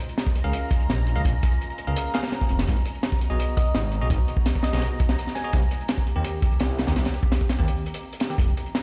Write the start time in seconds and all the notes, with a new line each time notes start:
Already playing: G#3 A#3 C#4 F4 A#5
0.09 closed hi-hat
0.18 snare, closed hi-hat
0.27 kick
0.35 closed hi-hat
0.44 C#2 C#4 G#4 A#4 F5
0.53 closed hi-hat
0.71 kick, closed hi-hat
0.80 closed hi-hat
0.89 A#1, snare, closed hi-hat
1.07 closed hi-hat
1.16 C#2 C#4 G#4 A#4 F5
1.25 A#1, kick, closed hi-hat
1.43 kick, closed hi-hat
1.52 closed hi-hat
1.61 closed hi-hat
1.70 closed hi-hat
1.78 closed hi-hat
1.87 C#2 C#4 G#4 A#4 F5
1.96 closed hi-hat
2.14 C#4 G#4 A#4 F5, snare, closed hi-hat
2.23 snare, closed hi-hat
2.28 snare, closed hi-hat
2.32 snare, closed hi-hat
2.41 kick
2.49 F1, closed hi-hat
2.59 snare, closed hi-hat
2.67 G#1 G#3 B3 D#4 F#4, kick, closed hi-hat
2.77 closed hi-hat
2.85 closed hi-hat
2.95 closed hi-hat
3.03 snare, closed hi-hat
3.12 kick
3.21 closed hi-hat
3.30 B1 B3 F#4 G#4 D#5
3.40 closed hi-hat
3.57 D#5, kick, closed hi-hat
3.65 closed hi-hat
3.75 G#1, snare, closed hi-hat
3.92 closed hi-hat
4.01 B1 B3 F#4 G#4 D#5
4.10 G#1, kick, closed hi-hat
4.28 closed hi-hat
4.37 kick
4.46 snare, closed hi-hat
4.55 kick
4.63 D#5, snare, closed hi-hat
4.73 B1 B3 F#4 G#4 D#5, snare, closed hi-hat
4.78 snare, closed hi-hat
4.82 closed hi-hat
5.00 kick, closed hi-hat
5.09 snare
5.19 closed hi-hat
5.27 snare
5.35 G#5, snare, closed hi-hat
5.44 B3 F#4 G#4 D#5
5.53 C2 A#3 C4 G4, kick, closed hi-hat
5.62 closed hi-hat
5.71 closed hi-hat
5.81 closed hi-hat
5.88 snare, closed hi-hat
5.98 kick
6.07 closed hi-hat
6.16 D#2 D#3 A#3 C4 G4
6.24 closed hi-hat
6.42 kick, closed hi-hat
6.51 closed hi-hat
6.59 C2, snare, closed hi-hat
6.78 snare, closed hi-hat
6.87 D#2 D#3 A#3 C4 G4, snare, closed hi-hat
6.96 C2, snare, closed hi-hat
7.05 snare, closed hi-hat
7.14 closed hi-hat
7.23 kick
7.32 snare, closed hi-hat
7.41 kick
7.49 snare, closed hi-hat
7.59 D#2 D#3 A#3 C4 G4, kick
7.68 closed hi-hat
7.77 closed hi-hat
7.86 closed hi-hat
7.94 closed hi-hat
8.03 closed hi-hat
8.13 closed hi-hat
8.20 snare, closed hi-hat
8.30 D#3 A#3 C4 G4, closed hi-hat
8.38 F1 G#3 C4 D#4 F4, kick, closed hi-hat
8.48 closed hi-hat
8.57 closed hi-hat
8.66 closed hi-hat
8.75 snare, closed hi-hat